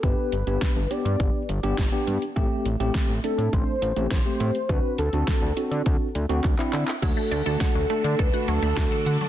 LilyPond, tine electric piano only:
\new Staff \with { instrumentName = "Tine electric piano" } { \time 4/4 \key d \mixolydian \tempo 4 = 103 <b d' g'>8 r16 <b d' g'>8 r16 <b d' g'>8. r8 <b d' g'>16 r16 <b d' g'>8 r16 | <a c' g'>8 r16 <a c' g'>8 r16 <a c' d'>8. r8 <a c' g'>16 r16 <a c' g'>8 r16 | <c' d' fis'>8 r16 <c' d' fis'>8 r16 <c' d' fis'>8. r8 <c' d' fis'>16 r16 <c' d' e'>8 r16 | <a d' fis'>8 r16 <a d' fis'>8 r16 <a d' a'>8 r16 <a d' fis'>8 r16 <a d' fis'>8. r16 | }